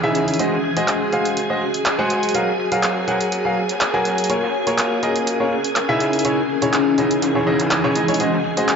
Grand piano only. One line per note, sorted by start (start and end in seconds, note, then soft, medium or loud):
0.03 0.37 C#3 medium
0.03 0.37 D#4 medium
0.03 0.37 E4 medium
0.03 0.37 G#4 medium
0.03 0.37 E5 loud
0.39 0.54 G#3 medium
0.39 0.54 F#4 medium
0.39 0.54 G#4 medium
0.39 0.54 C5 medium
0.39 0.54 D#5 medium
0.77 1.10 G#3 medium
0.77 1.10 F#4 medium
0.77 1.10 G#4 medium
0.77 1.10 C5 medium
0.77 1.10 D#5 medium
1.13 1.47 G#3 medium
1.13 1.47 F#4 medium
1.13 1.47 G#4 medium
1.13 1.47 C5 medium
1.13 1.47 F5 medium
1.50 1.63 G#3 medium
1.50 1.63 F#4 medium
1.50 1.63 G#4 medium
1.50 1.63 C5 medium
1.50 1.63 D#5 medium
1.99 2.32 G#3 medium
1.99 2.32 F#4 medium
1.99 2.32 G#4 medium
1.99 2.32 C5 medium
1.99 2.32 F#5 medium
2.35 2.49 F#3 medium
2.35 2.49 F#4 medium
2.35 2.49 G#4 medium
2.35 2.49 A#4 medium
2.35 2.49 F5 medium
2.72 3.05 F#3 medium
2.72 3.05 F#4 medium
2.72 3.05 G#4 medium
2.72 3.05 A#4 medium
2.72 3.05 F5 medium
3.08 3.42 F#3 medium
3.08 3.42 F#4 medium
3.08 3.42 G#4 medium
3.08 3.42 A#4 medium
3.08 3.42 F#5 medium
3.45 3.58 F#3 medium
3.45 3.58 F#4 medium
3.45 3.58 G#4 medium
3.45 3.58 A#4 medium
3.45 3.58 F5 medium
3.94 4.27 F#3 medium
3.94 4.27 F#4 medium
3.94 4.27 G#4 medium
3.94 4.27 A#4 medium
3.94 4.27 G#5 loud
4.30 4.44 A#3 medium
4.30 4.44 F4 medium
4.30 4.44 G#4 medium
4.30 4.44 A#4 medium
4.30 4.44 C#5 medium
4.67 5.00 A#3 medium
4.67 5.00 F4 medium
4.67 5.00 G#4 medium
4.67 5.00 A#4 medium
4.67 5.00 C#5 medium
5.03 5.37 A#3 medium
5.03 5.37 F4 medium
5.03 5.37 G#4 medium
5.03 5.37 A#4 medium
5.03 5.37 D#5 medium
5.40 5.53 A#3 medium
5.40 5.53 F4 medium
5.40 5.53 G#4 medium
5.40 5.53 A#4 medium
5.40 5.53 C#5 medium
5.89 6.22 C#3 medium
5.89 6.22 D#4 medium
5.89 6.22 E4 medium
5.89 6.22 G#4 medium
5.89 6.22 E5 loud
6.25 6.39 C#3 medium
6.25 6.39 D#4 medium
6.25 6.39 E4 medium
6.25 6.39 G#4 medium
6.25 6.39 C#5 medium
6.62 6.95 C#3 medium
6.62 6.95 D#4 medium
6.62 6.95 E4 medium
6.62 6.95 G#4 medium
6.62 6.95 C#5 medium
6.98 7.32 C#3 medium
6.98 7.32 D#4 medium
6.98 7.32 E4 medium
6.98 7.32 G#4 medium
6.98 7.32 D#5 medium
7.35 7.44 C#3 medium
7.35 7.44 D#4 medium
7.35 7.44 E4 medium
7.35 7.44 G#4 medium
7.35 7.44 C#5 medium
7.47 7.81 C#3 medium
7.47 7.81 D#4 medium
7.47 7.81 E4 medium
7.47 7.81 G#4 medium
7.47 7.81 D#5 loud
7.84 7.93 C#3 medium
7.84 7.93 D#4 medium
7.84 7.93 E4 medium
7.84 7.93 G#4 medium
7.84 7.93 C#5 loud
7.96 8.05 G#3 medium
7.96 8.05 D#4 medium
7.96 8.05 E4 medium
7.96 8.05 G#4 medium
7.96 8.05 D#5 medium
8.08 8.17 G#3 medium
8.08 8.17 D#4 medium
8.08 8.17 E4 medium
8.08 8.17 G#4 medium
8.08 8.17 C#5 medium
8.20 8.34 G#3 medium
8.20 8.34 F#4 medium
8.20 8.34 G#4 medium
8.20 8.34 C5 medium
8.20 8.34 D#5 medium
8.57 8.76 G#3 medium
8.57 8.76 F#4 medium
8.57 8.76 G#4 medium
8.57 8.76 C5 medium
8.57 8.76 D#5 medium